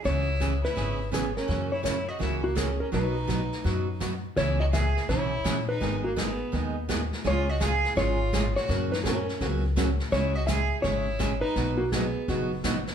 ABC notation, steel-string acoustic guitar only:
X:1
M:4/4
L:1/16
Q:"Swing" 1/4=167
K:C#dor
V:1 name="Steel-string acoustic guitar"
[C,E,B,CG]2 z2 [C,E,B,CG] z3 [C,E,B,CG]2 z2 [C,E,B,CG] z3 | [C,E,A,CF]2 z2 [C,E,A,CF] z3 [C,E,A,CF]2 z2 [C,E,A,CF] z3 | [B,,F,B,DF]2 z2 [B,,F,B,DF] z3 [B,,F,B,DF]2 z2 [B,,F,B,DF] z3 | [C,E,B,CG]2 z2 [C,E,B,CG] z3 [C,E,B,CG]2 z2 [C,E,B,CG] z3 |
[D,G,B,DG]2 z2 [D,G,B,DG] z3 [D,G,B,DG]2 z2 [D,G,B,DG] z3 | [C,G,C^EG]2 z2 [C,G,CEG] z3 [C,G,CEG]2 z2 [C,G,CEG] z3 | [C,F,A,CF]2 z2 [C,F,A,CF] z3 [C,F,A,CF]2 z2 [C,F,A,CF] z3 | [C,G,CEG]2 z2 [C,G,CEG] z3 [C,G,CEG]2 z2 [C,G,CEG] z3 |
[B,,F,B,DF]2 z2 [B,,F,B,DF] z3 [B,,F,B,DF]2 z2 [B,,F,B,DF] z3 |]